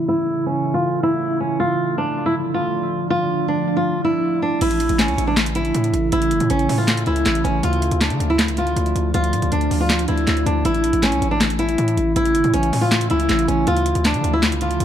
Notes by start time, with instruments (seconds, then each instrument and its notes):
Already playing: ambient pad C#3 E3 A3 E4
0.08 nylon-string guitar E4
0.46 nylon-string guitar C#4
0.74 nylon-string guitar F4
1.03 nylon-string guitar E4
1.40 nylon-string guitar C#4
1.59 ambient pad D3 F3 D4, nylon-string guitar F4
1.98 nylon-string guitar D4
2.26 nylon-string guitar E4
2.54 nylon-string guitar F4
3.10 nylon-string guitar F4
3.48 nylon-string guitar D4
3.77 nylon-string guitar F4
4.05 nylon-string guitar E4
4.42 nylon-string guitar D4
4.61 808-style bass A1, ambient pad C#3 E3 A3 E4, nylon-string guitar E4, closed hi-hat, crash
4.71 closed hi-hat
4.80 808-style bass A#1, closed hi-hat
4.89 808-style bass A1, closed hi-hat
4.99 nylon-string guitar C#4, snare, clap, closed hi-hat
5.08 808-style bass C#2, closed hi-hat
5.18 808-style bass A1, closed hi-hat
5.27 nylon-string guitar D4
5.37 snare, clap, closed hi-hat
5.46 closed hi-hat
5.55 nylon-string guitar E4, closed hi-hat
5.65 closed hi-hat
5.74 808-style bass A2, closed hi-hat
5.84 closed hi-hat
5.94 808-style bass A1, closed hi-hat
6.12 808-style bass A1, nylon-string guitar E4, closed hi-hat
6.22 closed hi-hat
6.31 808-style bass G1, closed hi-hat
6.40 808-style bass A2, closed hi-hat
6.50 808-style bass A1, nylon-string guitar C#4, closed hi-hat
6.59 closed hi-hat
6.69 808-style bass A2, open hi-hat
6.78 nylon-string guitar F4
6.88 snare, clap, closed hi-hat
6.97 closed hi-hat
7.06 808-style bass C#2, nylon-string guitar E4, closed hi-hat
7.16 closed hi-hat
7.26 808-style bass A1, snare, clap, closed hi-hat
7.35 closed hi-hat
7.44 808-style bass A1, nylon-string guitar C#4, closed hi-hat
7.63 808-style bass D2, ambient pad D3 F3 D4, nylon-string guitar F4, closed hi-hat
7.73 closed hi-hat
7.82 closed hi-hat
7.91 808-style bass D2, closed hi-hat
8.01 nylon-string guitar D4, snare, clap, closed hi-hat
8.10 808-style bass D3, closed hi-hat
8.20 808-style bass D2, closed hi-hat
8.30 nylon-string guitar E4
8.39 snare, clap, closed hi-hat
8.48 808-style bass C#2, closed hi-hat
8.57 nylon-string guitar F4, closed hi-hat
8.62 808-style bass D2
8.67 closed hi-hat
8.76 808-style bass D2, closed hi-hat
8.86 closed hi-hat
8.95 808-style bass D2, closed hi-hat
9.14 808-style bass D2, nylon-string guitar F4, closed hi-hat
9.24 closed hi-hat
9.33 808-style bass A2, closed hi-hat
9.42 808-style bass D2, closed hi-hat
9.52 808-style bass D2, nylon-string guitar D4, closed hi-hat
9.61 closed hi-hat
9.71 808-style bass D2, open hi-hat
9.81 nylon-string guitar F4
9.89 snare, clap, closed hi-hat
9.99 closed hi-hat
10.08 808-style bass D2, nylon-string guitar E4, closed hi-hat
10.18 closed hi-hat
10.27 808-style bass D2, snare, clap, closed hi-hat
10.37 closed hi-hat
10.46 808-style bass D2, nylon-string guitar D4, closed hi-hat
10.65 808-style bass A1, ambient pad C#3 E3 E4, nylon-string guitar E4, closed hi-hat
10.75 closed hi-hat
10.84 808-style bass A#1, closed hi-hat
10.93 808-style bass A1, closed hi-hat
11.03 nylon-string guitar C#4, snare, clap, closed hi-hat
11.12 808-style bass C#2, closed hi-hat
11.22 808-style bass A1, closed hi-hat
11.31 nylon-string guitar D4
11.41 snare, clap, closed hi-hat
11.50 closed hi-hat
11.59 nylon-string guitar E4, closed hi-hat
11.69 closed hi-hat
11.78 808-style bass A2, closed hi-hat
11.88 closed hi-hat
11.97 808-style bass A1, closed hi-hat
12.16 808-style bass A1, nylon-string guitar E4, closed hi-hat
12.25 closed hi-hat
12.35 808-style bass G1, closed hi-hat
12.44 808-style bass A2, closed hi-hat
12.54 808-style bass A1, nylon-string guitar C#4, closed hi-hat
12.63 closed hi-hat
12.73 808-style bass A2, open hi-hat
12.81 nylon-string guitar F4
12.91 snare, clap, closed hi-hat
13.01 closed hi-hat
13.10 808-style bass C#2, nylon-string guitar E4, closed hi-hat
13.20 closed hi-hat
13.29 808-style bass A1, snare, clap, closed hi-hat
13.39 closed hi-hat
13.48 808-style bass A1, nylon-string guitar C#4, closed hi-hat
13.67 808-style bass D2, ambient pad D3 F3 A3 F4, nylon-string guitar F4, closed hi-hat
13.77 closed hi-hat
13.86 closed hi-hat
13.95 808-style bass D2, closed hi-hat
14.05 nylon-string guitar D4, snare, clap, closed hi-hat
14.14 808-style bass D3, closed hi-hat
14.24 808-style bass D2, closed hi-hat
14.33 nylon-string guitar E4
14.43 snare, clap, closed hi-hat
14.52 808-style bass C#2, closed hi-hat
14.61 nylon-string guitar F4, closed hi-hat
14.66 808-style bass D2
14.71 closed hi-hat
14.80 808-style bass D2, closed hi-hat